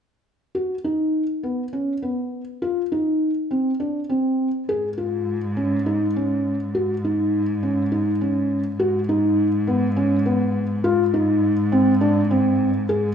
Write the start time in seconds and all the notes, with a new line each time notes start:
0.55 F#4
0.84 D#4
1.43 B3
1.73 C#4
2.02 B3
2.62 F4
2.92 D#4
3.51 C4
3.80 D4
4.09 C4
4.68 G#2 G#4
4.98 F4
5.57 C#4
5.86 D#4
6.16 C#4
6.75 G#2 F#4
7.04 D#4
7.63 C#4
7.92 D#4
8.21 C#4
8.79 G#2 F#4
9.09 D#4
9.67 B3
9.96 C#4
10.26 B3
10.84 G#2 F4
11.14 D#4
11.72 C4
12.01 D4
12.31 C4
12.89 G#2 G#4